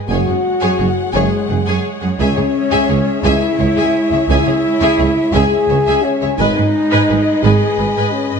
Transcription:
Already playing: B4
0.08 F#1 F#2 G#3 F#4 G#4 C#5 F#5 G#5
0.26 F#2 F#4 G#4 C#5
0.60 F#2 G#4 C#5 G#5
0.78 F#1 F#2 F#4 G#4 C#5
1.12 F#1 F#2 G#3 G#4 C#5 G#5
1.48 F#1 F#2 G#4 F#5
1.65 F#2 G#4 C#5 G#5
2.00 F#2 G#4 F#5
2.18 C#2 C#4 G#4 C#5 E5 G#5
2.36 C#2 G#4 C#5
2.71 C#2 G#4 E5 G#5
2.89 C#2 G#4 C#5
3.23 C#2 E4 G#4 E5 G#5
3.58 C#2 G#4 C#5 E5
3.75 C#2 G#4 E5 G#5
4.11 C#2 G#4 C#5 E5
4.28 C#2 E4 G#4 E5 G#5
4.47 C#2 G#4 C#5
4.81 C#2 G#4 E5 G#5
4.99 C#2 G#4 C#5
5.33 C#2 G#4 E5 G#5
5.68 C#2 G#4 C#5 E5
5.86 C#2 G#4 E5 G#5
6.03 C#4 C#5
6.21 C#2 G#4 C#5 E5
6.38 G#1 G#2 G#3 D#4 G#4 B4 D#5 G#5
6.56 G#2 G#4 B4
6.91 G#2 B4 D#5 G#5
7.09 G#1 G#2 G#4 B4
7.43 G#1 G#2 G#4 B4 D#5 G#5
7.78 G#1 G#2 B4 D#5
7.95 G#2 B4 D#5 G#5
8.13 C#4 C#5
8.31 G#2 B4 D#5

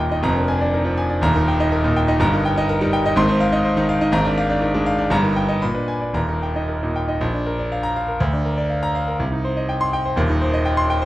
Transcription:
Already playing: D#1 D#2 A#2 D#4 A#4 D#5 G5 A#5
0.11 D#4 D#5
0.23 F1 F2 A#5
0.36 D4 A#4
0.48 G#5
0.61 D4 D5
0.74 D#4 A#4
0.85 F3 D4
0.97 G#5
1.10 D4 D5
1.21 D#1 D#2 A#5
1.35 D#4 A#4
1.48 G5
1.60 D#4 D#5
1.72 A#4
1.84 A#2 D#4
1.96 G5
2.08 D#4 D#5
2.20 G1 G2 A#5
2.34 D#4 A#4
2.45 G5
2.57 D#4 D#5
2.69 A#4
2.81 G3 D#4
2.93 G5
3.06 D#4 D#5
3.16 G#1 G#2 C6
3.28 D#4 C5
3.40 F5
3.52 D#4 D#5
3.65 C5
3.77 D#3 D#4
3.89 F5
4.01 D#4 D#5
4.12 G#1 G#2 A#5
4.25 D4 A#4
4.38 F5
4.50 D4 D5
4.61 D#4 A#4
4.74 G#3 D4
4.86 F5
4.98 D4 D5
5.10 G1 G2 A#5
5.23 D#4 A#4
5.36 G5
5.49 D#4 D#5
5.62 A#2 B5
5.74 D4 B4
5.88 G#5
6.01 D4 D5
6.13 D#1 D#2 A#5
6.28 D#4 A#4
6.43 G5
6.56 D#4 D#5
6.69 A#4
6.83 A#2 D#4
6.96 G5
7.08 D#4 D#5
7.21 A#1
7.34 D4
7.46 A#4
7.59 D5
7.72 F5
7.83 A#5
7.96 F5
8.08 A#4
8.20 D2
8.33 D4
8.45 A#4
8.58 D5
8.70 F5
8.83 A#5
8.95 F5
9.08 A#4
9.20 C2
9.32 D#4
9.45 C5
9.57 D#5
9.69 G5
9.81 C6
9.93 G5
10.05 C5
10.16 D#1 D#2
10.29 D#4
10.42 C5
10.54 D#5
10.65 G5
10.77 C6
10.90 G5
11.02 C5

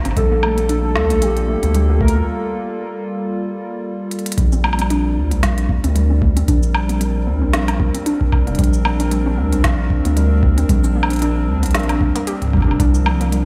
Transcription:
Already playing: F3 A#3 C4 D4
0.05 G1 C4, closed hi-hat, high woodblock
0.11 high woodblock
0.17 A#1 G3 A4, kick, closed hi-hat
0.31 A#3
0.37 A#3 A4
0.43 A3, high woodblock
0.58 A#3, closed hi-hat
0.64 F4
0.69 D4, closed hi-hat
0.96 D2, snare
1.10 A#1 A3, closed hi-hat
1.22 G3 G4, closed hi-hat
1.37 closed hi-hat
1.48 A3
1.63 D2 A#3, closed hi-hat
1.74 G3, closed hi-hat
1.89 A#3
2.01 A3 A#4, kick
2.08 closed hi-hat
2.16 A#3
4.11 closed hi-hat
4.19 closed hi-hat
4.26 closed hi-hat
4.32 closed hi-hat
4.38 A#1 G3, kick, closed hi-hat
4.52 C4, cabasa
4.57 C4
4.64 A#3, high woodblock
4.73 high woodblock
4.79 C4, closed hi-hat, high woodblock
4.86 D4
4.90 D4 A#4, closed hi-hat
5.17 D2
5.31 A#1 A#3, closed hi-hat
5.43 G3, kick, snare, closed hi-hat
5.58 closed hi-hat
5.69 A#3, kick
5.84 D2 C4, closed hi-hat
5.96 G3, closed hi-hat
6.10 C4
6.22 A#3, kick
6.37 C4, closed hi-hat
6.48 A#1 D4, kick, closed hi-hat
6.63 cabasa
6.75 high woodblock
6.89 A#3, closed hi-hat
7.01 G3, closed hi-hat
7.27 D2 A#3
7.42 A#1 C4
7.53 G3, snare, closed hi-hat
7.68 C4, closed hi-hat, high woodblock
7.80 A#3, kick
7.94 C4, closed hi-hat
8.06 D4, closed hi-hat
8.21 kick
8.32 kick, high woodblock
8.47 F1 A#3, closed hi-hat
8.55 A#1, kick, closed hi-hat
8.59 G3, closed hi-hat
8.64 closed hi-hat
8.73 cabasa
8.85 A#3, high woodblock
9.00 C4, closed hi-hat
9.11 G3, closed hi-hat
9.26 C4
9.38 D2 A#3
9.52 A#1 C4, closed hi-hat
9.64 D4, kick, snare, closed hi-hat
9.90 kick
10.05 D2 A#3, closed hi-hat
10.17 G3, closed hi-hat
10.43 A#3, kick
10.58 C4, closed hi-hat
10.69 A#1 G3, kick, closed hi-hat
10.84 C4, cabasa
10.96 A#3
11.03 high woodblock
11.10 C4, closed hi-hat
11.13 closed hi-hat
11.16 closed hi-hat
11.19 D4, closed hi-hat
11.22 closed hi-hat
11.48 D2
11.63 A#1 A#3, closed hi-hat
11.66 closed hi-hat
11.71 snare, closed hi-hat
11.74 G3, closed hi-hat
11.79 closed hi-hat
11.83 closed hi-hat
11.89 closed hi-hat, high woodblock
12.01 A#3, kick
12.16 A#3, closed hi-hat
12.27 G4, closed hi-hat
12.42 kick, closed hi-hat
12.45 kick
12.48 kick
12.51 kick
12.53 G3, kick, high woodblock
12.57 kick
12.61 kick, high woodblock
12.64 F1 D4, kick
12.71 high woodblock
12.80 C2 F3 D4, kick, closed hi-hat
12.94 cabasa
13.06 high tom, high woodblock
13.21 A#3, closed hi-hat
13.32 G3, closed hi-hat

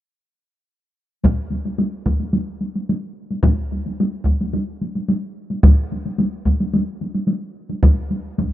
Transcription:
1.24 taiko, taiko high
1.50 taiko high
1.65 taiko high
1.78 taiko high
2.06 taiko, taiko high
2.20 taiko high
2.33 taiko high
2.61 taiko high
2.75 taiko high
2.89 taiko high
3.31 taiko high
3.43 taiko, taiko high
3.72 taiko high
3.86 taiko high
4.00 taiko high
4.25 taiko, taiko high
4.41 taiko high
4.53 taiko high
4.81 taiko high
4.95 taiko high
5.08 taiko high
5.50 taiko high
5.63 taiko, taiko high
5.92 taiko high
6.05 taiko high
6.18 taiko high
6.45 taiko, taiko high
6.60 taiko high
6.73 taiko high
7.01 taiko high
7.14 taiko high
7.27 taiko high
7.69 taiko high
7.83 taiko, taiko high
8.11 taiko high
8.38 taiko, taiko high

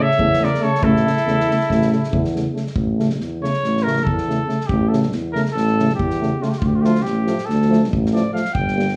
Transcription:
0.00 C#5 E5
0.11 snare
0.16 E2 C#3 A3, kick
0.33 snare
0.37 C#3 A3
0.43 A#4 D5, snare
0.54 snare
0.59 C#3 A3 A4 C#5, snare
0.75 snare
0.80 A1 C#3 A3 E4 A4, kick
0.96 snare
1.05 C#3 A3, snare
1.17 snare
1.25 E2 C#3 A3, snare
1.40 snare
1.48 C#3 A3, snare
1.61 snare
1.70 A1 C#3 A3, kick, snare
1.82 snare
1.91 C#3 A3, snare
2.04 snare
2.11 E2 C#3 A3, kick
2.25 snare
2.34 C#3 A3, snare
2.53 C#3 A3, snare
2.67 snare
2.75 A1, kick
2.97 C#3 A3, snare
3.10 snare
3.19 E2, snare
3.41 C#3 A3 C#5, snare
3.54 snare
3.63 A1, snare
3.77 snare
3.82 C#3 A3 A#4
3.87 snare
3.96 snare
4.04 E2 A4, kick
4.18 snare
4.28 C#3 A3, snare
4.46 C#3 A3, snare
4.61 snare
4.67 A1 G4, kick
4.89 C#3 A3 A4
4.93 snare
5.03 snare
5.12 E2, snare
5.32 C#3 A3 A#4, snare
5.46 snare
5.52 A1 A4
5.57 snare
5.67 snare
5.79 C#3 A3, snare
5.89 snare
5.95 G4
5.99 E2, kick
6.10 snare
6.20 C#3 A3, snare
6.40 C#3 A3 F4, snare
6.49 G4, snare
6.58 D2 F4, kick
6.65 G4
6.75 F4
6.81 F3 A3 G4, snare
6.85 F4
6.95 snare
7.02 G4, snare
7.06 A1
7.26 F3 A3, snare
7.38 snare
7.45 D2 A4
7.50 snare
7.62 snare
7.67 F3 A3
7.73 snare
7.84 snare
7.90 A1, kick
8.06 snare
8.11 F3 A3 D5
8.16 snare
8.32 F3 A3 F5, snare
8.45 snare
8.53 G1 G5, kick
8.68 snare
8.76 G3 A#3, snare
8.88 snare

